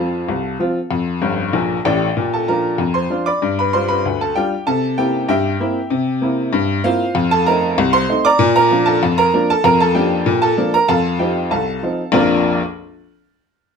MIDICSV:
0, 0, Header, 1, 2, 480
1, 0, Start_track
1, 0, Key_signature, -2, "major"
1, 0, Tempo, 624350
1, 698, Time_signature, 2, 2, 24, 8
1, 10582, End_track
2, 0, Start_track
2, 0, Title_t, "Upright piano"
2, 0, Program_c, 0, 0
2, 0, Control_c, 0, 64, 127
2, 0, Note_on_c, 0, 41, 94
2, 0, Note_on_c, 0, 53, 67
2, 0, Note_on_c, 0, 60, 59
2, 0, Note_on_c, 0, 65, 57
2, 0, Note_on_c, 0, 69, 78
2, 0, Note_on_c, 0, 77, 80
2, 0, Note_on_c, 0, 81, 91
2, 110, Note_off_c, 0, 53, 0
2, 111, Note_off_c, 0, 60, 0
2, 113, Note_off_c, 0, 65, 0
2, 219, Note_on_c, 0, 36, 86
2, 222, Control_c, 0, 64, 0
2, 231, Note_off_c, 0, 41, 0
2, 423, Note_off_c, 0, 36, 0
2, 458, Note_on_c, 0, 53, 68
2, 460, Note_on_c, 0, 60, 74
2, 464, Note_on_c, 0, 65, 79
2, 591, Note_off_c, 0, 53, 0
2, 592, Note_off_c, 0, 60, 0
2, 595, Note_off_c, 0, 65, 0
2, 696, Note_on_c, 0, 41, 99
2, 875, Control_c, 0, 64, 127
2, 902, Note_off_c, 0, 41, 0
2, 935, Note_on_c, 0, 43, 88
2, 936, Note_on_c, 0, 31, 94
2, 1118, Note_off_c, 0, 31, 0
2, 1118, Note_off_c, 0, 43, 0
2, 1156, Note_off_c, 0, 69, 0
2, 1156, Note_off_c, 0, 77, 0
2, 1177, Note_on_c, 0, 46, 88
2, 1179, Note_on_c, 0, 34, 88
2, 1182, Note_off_c, 0, 81, 0
2, 1187, Control_c, 0, 64, 0
2, 1360, Note_off_c, 0, 46, 0
2, 1361, Note_off_c, 0, 34, 0
2, 1422, Note_on_c, 0, 79, 100
2, 1425, Note_on_c, 0, 33, 102
2, 1426, Note_on_c, 0, 45, 96
2, 1431, Note_on_c, 0, 74, 78
2, 1432, Note_on_c, 0, 67, 78
2, 1605, Note_off_c, 0, 33, 0
2, 1605, Note_off_c, 0, 45, 0
2, 1665, Note_on_c, 0, 46, 90
2, 1763, Note_off_c, 0, 74, 0
2, 1764, Note_off_c, 0, 67, 0
2, 1784, Note_off_c, 0, 79, 0
2, 1795, Note_on_c, 0, 81, 81
2, 1801, Control_c, 0, 64, 127
2, 1802, Note_on_c, 0, 69, 64
2, 1869, Note_off_c, 0, 46, 0
2, 1906, Note_off_c, 0, 69, 0
2, 1909, Note_off_c, 0, 81, 0
2, 1909, Note_on_c, 0, 53, 45
2, 1909, Note_on_c, 0, 82, 83
2, 1911, Note_on_c, 0, 62, 51
2, 1912, Note_on_c, 0, 65, 63
2, 1916, Note_on_c, 0, 70, 62
2, 2039, Note_off_c, 0, 53, 0
2, 2041, Note_off_c, 0, 62, 0
2, 2042, Note_off_c, 0, 65, 0
2, 2140, Note_on_c, 0, 41, 93
2, 2153, Control_c, 0, 64, 0
2, 2245, Note_off_c, 0, 70, 0
2, 2261, Note_on_c, 0, 84, 90
2, 2267, Note_off_c, 0, 82, 0
2, 2269, Note_on_c, 0, 72, 82
2, 2346, Note_off_c, 0, 41, 0
2, 2385, Note_on_c, 0, 53, 65
2, 2389, Note_on_c, 0, 62, 60
2, 2392, Note_on_c, 0, 65, 68
2, 2490, Note_off_c, 0, 72, 0
2, 2503, Note_off_c, 0, 84, 0
2, 2506, Note_on_c, 0, 86, 100
2, 2514, Note_on_c, 0, 83, 77
2, 2515, Note_on_c, 0, 74, 84
2, 2517, Note_off_c, 0, 53, 0
2, 2520, Note_off_c, 0, 62, 0
2, 2522, Note_off_c, 0, 65, 0
2, 2630, Note_on_c, 0, 43, 96
2, 2733, Note_off_c, 0, 83, 0
2, 2734, Note_off_c, 0, 74, 0
2, 2746, Note_off_c, 0, 86, 0
2, 2759, Note_on_c, 0, 83, 88
2, 2768, Note_on_c, 0, 71, 75
2, 2777, Control_c, 0, 64, 127
2, 2832, Note_off_c, 0, 43, 0
2, 2869, Note_off_c, 0, 71, 0
2, 2870, Note_on_c, 0, 84, 93
2, 2872, Note_off_c, 0, 83, 0
2, 2874, Note_on_c, 0, 55, 59
2, 2875, Note_on_c, 0, 62, 57
2, 2879, Note_on_c, 0, 65, 57
2, 2881, Note_on_c, 0, 72, 81
2, 2985, Note_off_c, 0, 72, 0
2, 2986, Note_on_c, 0, 83, 100
2, 2987, Note_off_c, 0, 84, 0
2, 3000, Note_on_c, 0, 71, 75
2, 3003, Note_off_c, 0, 55, 0
2, 3004, Note_off_c, 0, 62, 0
2, 3007, Note_off_c, 0, 65, 0
2, 3112, Control_c, 0, 64, 0
2, 3116, Note_on_c, 0, 38, 80
2, 3216, Note_off_c, 0, 71, 0
2, 3225, Note_off_c, 0, 83, 0
2, 3238, Note_on_c, 0, 81, 86
2, 3246, Note_on_c, 0, 69, 70
2, 3315, Note_off_c, 0, 38, 0
2, 3347, Note_off_c, 0, 69, 0
2, 3348, Note_on_c, 0, 79, 100
2, 3351, Note_off_c, 0, 81, 0
2, 3352, Note_on_c, 0, 55, 59
2, 3353, Note_on_c, 0, 62, 61
2, 3356, Note_on_c, 0, 65, 75
2, 3356, Note_on_c, 0, 67, 73
2, 3481, Note_off_c, 0, 55, 0
2, 3482, Note_off_c, 0, 62, 0
2, 3484, Note_off_c, 0, 65, 0
2, 3573, Note_off_c, 0, 67, 0
2, 3585, Note_off_c, 0, 79, 0
2, 3588, Note_on_c, 0, 81, 107
2, 3591, Note_on_c, 0, 48, 97
2, 3598, Note_on_c, 0, 69, 77
2, 3743, Control_c, 0, 64, 127
2, 3791, Note_off_c, 0, 48, 0
2, 3814, Note_off_c, 0, 69, 0
2, 3825, Note_off_c, 0, 81, 0
2, 3827, Note_on_c, 0, 79, 98
2, 3829, Note_on_c, 0, 58, 54
2, 3829, Note_on_c, 0, 60, 56
2, 3832, Note_on_c, 0, 64, 67
2, 3834, Note_on_c, 0, 67, 69
2, 3958, Note_off_c, 0, 58, 0
2, 3959, Note_off_c, 0, 60, 0
2, 3961, Note_off_c, 0, 64, 0
2, 4051, Note_off_c, 0, 67, 0
2, 4053, Note_off_c, 0, 79, 0
2, 4063, Note_on_c, 0, 43, 99
2, 4064, Note_on_c, 0, 79, 105
2, 4068, Control_c, 0, 64, 0
2, 4072, Note_on_c, 0, 67, 75
2, 4074, Note_on_c, 0, 76, 82
2, 4265, Note_off_c, 0, 43, 0
2, 4306, Note_on_c, 0, 58, 64
2, 4309, Note_on_c, 0, 60, 70
2, 4313, Note_on_c, 0, 64, 77
2, 4436, Note_off_c, 0, 58, 0
2, 4438, Note_off_c, 0, 60, 0
2, 4440, Note_off_c, 0, 64, 0
2, 4539, Note_on_c, 0, 48, 107
2, 4693, Control_c, 0, 64, 127
2, 4742, Note_off_c, 0, 48, 0
2, 4777, Note_on_c, 0, 58, 62
2, 4784, Note_on_c, 0, 60, 62
2, 4787, Note_on_c, 0, 64, 70
2, 4909, Note_off_c, 0, 58, 0
2, 4913, Note_off_c, 0, 60, 0
2, 4916, Note_off_c, 0, 64, 0
2, 5017, Note_on_c, 0, 43, 110
2, 5022, Control_c, 0, 64, 0
2, 5220, Note_off_c, 0, 43, 0
2, 5230, Note_off_c, 0, 67, 0
2, 5231, Note_off_c, 0, 76, 0
2, 5257, Note_off_c, 0, 79, 0
2, 5259, Note_on_c, 0, 58, 75
2, 5260, Note_on_c, 0, 77, 115
2, 5263, Note_on_c, 0, 60, 65
2, 5268, Note_on_c, 0, 64, 72
2, 5268, Note_on_c, 0, 65, 96
2, 5270, Note_on_c, 0, 72, 88
2, 5389, Note_off_c, 0, 58, 0
2, 5392, Note_off_c, 0, 60, 0
2, 5395, Note_off_c, 0, 64, 0
2, 5496, Note_on_c, 0, 41, 113
2, 5595, Note_off_c, 0, 65, 0
2, 5595, Note_off_c, 0, 72, 0
2, 5615, Note_off_c, 0, 77, 0
2, 5622, Note_on_c, 0, 81, 118
2, 5632, Note_on_c, 0, 69, 87
2, 5658, Control_c, 0, 64, 127
2, 5698, Note_off_c, 0, 41, 0
2, 5734, Note_off_c, 0, 69, 0
2, 5737, Note_off_c, 0, 81, 0
2, 5738, Note_on_c, 0, 82, 108
2, 5741, Note_on_c, 0, 57, 73
2, 5742, Note_on_c, 0, 60, 72
2, 5747, Note_on_c, 0, 63, 79
2, 5748, Note_on_c, 0, 70, 86
2, 5870, Note_off_c, 0, 57, 0
2, 5871, Note_off_c, 0, 60, 0
2, 5874, Note_off_c, 0, 63, 0
2, 5981, Control_c, 0, 64, 0
2, 5982, Note_on_c, 0, 36, 115
2, 6074, Note_off_c, 0, 70, 0
2, 6094, Note_off_c, 0, 82, 0
2, 6096, Note_on_c, 0, 84, 127
2, 6103, Note_on_c, 0, 72, 86
2, 6181, Note_off_c, 0, 36, 0
2, 6218, Note_on_c, 0, 57, 73
2, 6224, Note_on_c, 0, 60, 73
2, 6225, Note_on_c, 0, 63, 91
2, 6320, Note_off_c, 0, 72, 0
2, 6333, Note_off_c, 0, 84, 0
2, 6340, Note_on_c, 0, 86, 127
2, 6348, Note_off_c, 0, 57, 0
2, 6349, Note_on_c, 0, 74, 108
2, 6350, Note_on_c, 0, 82, 104
2, 6352, Note_off_c, 0, 60, 0
2, 6353, Note_off_c, 0, 63, 0
2, 6449, Note_on_c, 0, 46, 127
2, 6563, Note_off_c, 0, 74, 0
2, 6564, Note_off_c, 0, 82, 0
2, 6575, Note_off_c, 0, 86, 0
2, 6579, Note_on_c, 0, 82, 127
2, 6585, Control_c, 0, 64, 127
2, 6585, Note_on_c, 0, 70, 96
2, 6653, Note_off_c, 0, 46, 0
2, 6697, Note_on_c, 0, 53, 70
2, 6700, Note_on_c, 0, 58, 66
2, 6706, Note_on_c, 0, 62, 74
2, 6801, Note_off_c, 0, 70, 0
2, 6809, Note_on_c, 0, 81, 112
2, 6814, Note_off_c, 0, 82, 0
2, 6821, Note_on_c, 0, 69, 88
2, 6826, Note_off_c, 0, 53, 0
2, 6829, Note_off_c, 0, 58, 0
2, 6833, Note_off_c, 0, 62, 0
2, 6936, Control_c, 0, 64, 0
2, 6940, Note_on_c, 0, 41, 110
2, 7038, Note_off_c, 0, 69, 0
2, 7049, Note_off_c, 0, 81, 0
2, 7056, Note_on_c, 0, 82, 125
2, 7063, Note_on_c, 0, 70, 100
2, 7139, Note_off_c, 0, 41, 0
2, 7177, Note_on_c, 0, 53, 73
2, 7180, Note_on_c, 0, 58, 82
2, 7183, Note_on_c, 0, 62, 80
2, 7278, Note_off_c, 0, 70, 0
2, 7291, Note_off_c, 0, 82, 0
2, 7305, Note_on_c, 0, 81, 123
2, 7306, Note_off_c, 0, 53, 0
2, 7308, Note_off_c, 0, 58, 0
2, 7310, Note_off_c, 0, 62, 0
2, 7314, Note_on_c, 0, 69, 88
2, 7412, Note_on_c, 0, 41, 117
2, 7412, Note_on_c, 0, 82, 113
2, 7413, Note_off_c, 0, 69, 0
2, 7416, Note_off_c, 0, 81, 0
2, 7420, Note_on_c, 0, 70, 102
2, 7526, Note_off_c, 0, 70, 0
2, 7529, Note_off_c, 0, 82, 0
2, 7537, Note_on_c, 0, 81, 113
2, 7548, Note_on_c, 0, 69, 99
2, 7578, Control_c, 0, 64, 127
2, 7614, Note_off_c, 0, 41, 0
2, 7648, Note_on_c, 0, 53, 68
2, 7648, Note_on_c, 0, 79, 98
2, 7650, Note_off_c, 0, 69, 0
2, 7651, Note_on_c, 0, 58, 63
2, 7652, Note_off_c, 0, 81, 0
2, 7656, Note_on_c, 0, 62, 74
2, 7659, Note_on_c, 0, 67, 93
2, 7780, Note_off_c, 0, 53, 0
2, 7782, Note_off_c, 0, 58, 0
2, 7786, Note_off_c, 0, 62, 0
2, 7888, Note_on_c, 0, 46, 111
2, 7894, Control_c, 0, 64, 0
2, 7988, Note_off_c, 0, 67, 0
2, 8008, Note_off_c, 0, 79, 0
2, 8009, Note_on_c, 0, 81, 114
2, 8020, Note_on_c, 0, 69, 96
2, 8092, Note_off_c, 0, 46, 0
2, 8129, Note_on_c, 0, 53, 72
2, 8131, Note_on_c, 0, 58, 82
2, 8135, Note_on_c, 0, 62, 73
2, 8237, Note_off_c, 0, 69, 0
2, 8248, Note_off_c, 0, 81, 0
2, 8257, Note_on_c, 0, 82, 116
2, 8260, Note_off_c, 0, 53, 0
2, 8262, Note_off_c, 0, 58, 0
2, 8265, Note_off_c, 0, 62, 0
2, 8268, Note_on_c, 0, 70, 85
2, 8367, Note_on_c, 0, 81, 112
2, 8370, Note_off_c, 0, 70, 0
2, 8371, Note_on_c, 0, 41, 109
2, 8372, Note_off_c, 0, 82, 0
2, 8377, Note_on_c, 0, 69, 86
2, 8379, Note_on_c, 0, 77, 89
2, 8497, Control_c, 0, 64, 127
2, 8574, Note_off_c, 0, 41, 0
2, 8596, Note_off_c, 0, 69, 0
2, 8597, Note_off_c, 0, 77, 0
2, 8605, Note_on_c, 0, 53, 67
2, 8605, Note_on_c, 0, 79, 85
2, 8608, Note_off_c, 0, 81, 0
2, 8609, Note_on_c, 0, 60, 59
2, 8612, Note_on_c, 0, 63, 60
2, 8613, Note_on_c, 0, 67, 70
2, 8739, Note_off_c, 0, 53, 0
2, 8741, Note_off_c, 0, 60, 0
2, 8743, Note_off_c, 0, 63, 0
2, 8835, Note_off_c, 0, 67, 0
2, 8848, Note_off_c, 0, 79, 0
2, 8849, Note_on_c, 0, 36, 82
2, 8849, Note_on_c, 0, 81, 96
2, 8857, Note_on_c, 0, 69, 69
2, 8857, Note_on_c, 0, 77, 64
2, 8858, Control_c, 0, 64, 0
2, 9055, Note_off_c, 0, 36, 0
2, 9095, Note_on_c, 0, 53, 58
2, 9096, Note_on_c, 0, 60, 65
2, 9100, Note_on_c, 0, 63, 61
2, 9227, Note_off_c, 0, 53, 0
2, 9228, Note_off_c, 0, 60, 0
2, 9230, Note_off_c, 0, 63, 0
2, 9306, Note_off_c, 0, 69, 0
2, 9306, Note_off_c, 0, 77, 0
2, 9317, Note_on_c, 0, 34, 110
2, 9323, Note_on_c, 0, 41, 100
2, 9325, Note_on_c, 0, 53, 107
2, 9326, Note_on_c, 0, 58, 107
2, 9326, Note_on_c, 0, 62, 105
2, 9328, Note_on_c, 0, 65, 107
2, 9330, Note_on_c, 0, 82, 72
2, 9333, Note_off_c, 0, 81, 0
2, 9487, Control_c, 0, 64, 127
2, 9593, Note_off_c, 0, 34, 0
2, 9596, Note_off_c, 0, 41, 0
2, 9598, Note_off_c, 0, 53, 0
2, 9598, Note_off_c, 0, 58, 0
2, 9598, Note_off_c, 0, 62, 0
2, 9599, Note_off_c, 0, 65, 0
2, 9600, Note_off_c, 0, 82, 0
2, 9684, Control_c, 0, 64, 0
2, 10582, End_track
0, 0, End_of_file